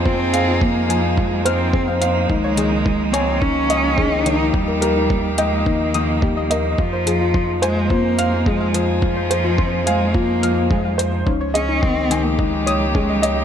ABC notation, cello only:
X:1
M:4/4
L:1/16
Q:1/4=107
K:Fm
V:1 name="Cello"
C4 B,4 A,2 C4 z2 | A,6 C2 D6 E2 | G,6 A,2 B,6 z2 | F,6 A,2 B,4 A,3 z |
F,6 A,2 B,4 A,3 z | z2 D2 C3 B, A,3- A,/2 B,/2 A,3 z |]